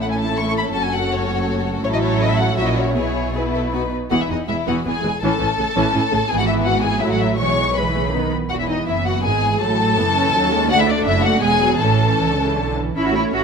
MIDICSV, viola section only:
0, 0, Header, 1, 2, 480
1, 0, Start_track
1, 0, Key_signature, 4, "major"
1, 0, Tempo, 363416
1, 1008, Time_signature, 3, 2, 24, 8
1, 3404, Tempo, 380228
1, 6284, Tempo, 364520
1, 14444, Tempo, 379747
1, 17456, End_track
2, 0, Start_track
2, 0, Title_t, "Viola section"
2, 0, Program_c, 0, 48
2, 0, Note_on_c, 0, 57, 34
2, 0, Note_on_c, 0, 61, 33
2, 2382, Note_off_c, 0, 57, 0
2, 2384, Note_off_c, 0, 61, 0
2, 2439, Note_on_c, 0, 61, 45
2, 2442, Note_on_c, 0, 54, 47
2, 3354, Note_off_c, 0, 61, 0
2, 3355, Note_off_c, 0, 54, 0
2, 3395, Note_on_c, 0, 61, 38
2, 3396, Note_on_c, 0, 54, 39
2, 3874, Note_off_c, 0, 61, 0
2, 3875, Note_off_c, 0, 54, 0
2, 3877, Note_on_c, 0, 64, 31
2, 3878, Note_on_c, 0, 59, 31
2, 4358, Note_off_c, 0, 59, 0
2, 4367, Note_off_c, 0, 64, 0
2, 4374, Note_on_c, 0, 59, 31
2, 4382, Note_on_c, 0, 64, 32
2, 4855, Note_off_c, 0, 59, 0
2, 4859, Note_off_c, 0, 64, 0
2, 4867, Note_on_c, 0, 63, 28
2, 4876, Note_on_c, 0, 59, 29
2, 4971, Note_off_c, 0, 59, 0
2, 5109, Note_off_c, 0, 63, 0
2, 5339, Note_on_c, 0, 52, 34
2, 5339, Note_on_c, 0, 59, 36
2, 5556, Note_off_c, 0, 52, 0
2, 5561, Note_off_c, 0, 59, 0
2, 5572, Note_on_c, 0, 52, 26
2, 5575, Note_on_c, 0, 59, 26
2, 5668, Note_off_c, 0, 52, 0
2, 5670, Note_off_c, 0, 59, 0
2, 5808, Note_on_c, 0, 52, 30
2, 5811, Note_on_c, 0, 56, 26
2, 5904, Note_off_c, 0, 52, 0
2, 5906, Note_off_c, 0, 56, 0
2, 6042, Note_on_c, 0, 52, 39
2, 6043, Note_on_c, 0, 59, 42
2, 6263, Note_off_c, 0, 52, 0
2, 6263, Note_off_c, 0, 59, 0
2, 6279, Note_on_c, 0, 52, 37
2, 6283, Note_on_c, 0, 59, 31
2, 6376, Note_off_c, 0, 52, 0
2, 6379, Note_off_c, 0, 59, 0
2, 6516, Note_on_c, 0, 56, 31
2, 6517, Note_on_c, 0, 52, 36
2, 6613, Note_off_c, 0, 52, 0
2, 6613, Note_off_c, 0, 56, 0
2, 6774, Note_on_c, 0, 61, 39
2, 6780, Note_on_c, 0, 52, 44
2, 6978, Note_off_c, 0, 61, 0
2, 6980, Note_off_c, 0, 52, 0
2, 6994, Note_on_c, 0, 61, 33
2, 6996, Note_on_c, 0, 52, 33
2, 7091, Note_off_c, 0, 61, 0
2, 7092, Note_off_c, 0, 52, 0
2, 7234, Note_on_c, 0, 49, 36
2, 7235, Note_on_c, 0, 57, 36
2, 7329, Note_off_c, 0, 49, 0
2, 7330, Note_off_c, 0, 57, 0
2, 7468, Note_on_c, 0, 52, 54
2, 7468, Note_on_c, 0, 61, 51
2, 7690, Note_off_c, 0, 52, 0
2, 7690, Note_off_c, 0, 61, 0
2, 7710, Note_on_c, 0, 52, 39
2, 7710, Note_on_c, 0, 61, 42
2, 7803, Note_off_c, 0, 52, 0
2, 7804, Note_off_c, 0, 61, 0
2, 7938, Note_on_c, 0, 57, 40
2, 7939, Note_on_c, 0, 49, 45
2, 8034, Note_off_c, 0, 49, 0
2, 8034, Note_off_c, 0, 57, 0
2, 8177, Note_on_c, 0, 59, 43
2, 8178, Note_on_c, 0, 52, 45
2, 9080, Note_off_c, 0, 52, 0
2, 9080, Note_off_c, 0, 59, 0
2, 9134, Note_on_c, 0, 54, 44
2, 9139, Note_on_c, 0, 57, 45
2, 9615, Note_on_c, 0, 56, 36
2, 9622, Note_off_c, 0, 54, 0
2, 9622, Note_on_c, 0, 52, 34
2, 9625, Note_off_c, 0, 57, 0
2, 10092, Note_off_c, 0, 56, 0
2, 10102, Note_off_c, 0, 52, 0
2, 10108, Note_on_c, 0, 56, 35
2, 10116, Note_on_c, 0, 52, 38
2, 10207, Note_off_c, 0, 56, 0
2, 10348, Note_on_c, 0, 57, 34
2, 10448, Note_off_c, 0, 57, 0
2, 10584, Note_on_c, 0, 51, 35
2, 10592, Note_on_c, 0, 59, 34
2, 10595, Note_off_c, 0, 52, 0
2, 10837, Note_off_c, 0, 59, 0
2, 10838, Note_off_c, 0, 51, 0
2, 11079, Note_on_c, 0, 52, 35
2, 11082, Note_on_c, 0, 59, 36
2, 12001, Note_off_c, 0, 52, 0
2, 12057, Note_on_c, 0, 51, 40
2, 12294, Note_on_c, 0, 52, 42
2, 12300, Note_off_c, 0, 51, 0
2, 12485, Note_off_c, 0, 59, 0
2, 12536, Note_on_c, 0, 54, 41
2, 12539, Note_off_c, 0, 52, 0
2, 12539, Note_on_c, 0, 57, 43
2, 12768, Note_off_c, 0, 57, 0
2, 12784, Note_on_c, 0, 57, 47
2, 12880, Note_off_c, 0, 57, 0
2, 13015, Note_on_c, 0, 59, 52
2, 13019, Note_on_c, 0, 52, 50
2, 13020, Note_off_c, 0, 54, 0
2, 13112, Note_off_c, 0, 59, 0
2, 13259, Note_on_c, 0, 61, 53
2, 13483, Note_off_c, 0, 61, 0
2, 13498, Note_off_c, 0, 52, 0
2, 13499, Note_on_c, 0, 61, 51
2, 13507, Note_on_c, 0, 54, 56
2, 13739, Note_off_c, 0, 54, 0
2, 13739, Note_on_c, 0, 56, 56
2, 13960, Note_off_c, 0, 61, 0
2, 13972, Note_off_c, 0, 56, 0
2, 13981, Note_on_c, 0, 62, 54
2, 13983, Note_on_c, 0, 57, 53
2, 14906, Note_on_c, 0, 59, 44
2, 14910, Note_on_c, 0, 56, 52
2, 14916, Note_off_c, 0, 62, 0
2, 14917, Note_off_c, 0, 57, 0
2, 15145, Note_off_c, 0, 56, 0
2, 15158, Note_on_c, 0, 54, 45
2, 15382, Note_off_c, 0, 59, 0
2, 15388, Note_on_c, 0, 52, 37
2, 15392, Note_on_c, 0, 61, 36
2, 15394, Note_off_c, 0, 54, 0
2, 16590, Note_off_c, 0, 52, 0
2, 16617, Note_off_c, 0, 61, 0
2, 16848, Note_on_c, 0, 61, 40
2, 16852, Note_on_c, 0, 64, 39
2, 17072, Note_off_c, 0, 61, 0
2, 17075, Note_off_c, 0, 64, 0
2, 17094, Note_on_c, 0, 61, 40
2, 17095, Note_on_c, 0, 57, 38
2, 17309, Note_off_c, 0, 61, 0
2, 17324, Note_on_c, 0, 61, 44
2, 17324, Note_on_c, 0, 64, 42
2, 17328, Note_off_c, 0, 57, 0
2, 17456, Note_off_c, 0, 61, 0
2, 17456, Note_off_c, 0, 64, 0
2, 17456, End_track
0, 0, End_of_file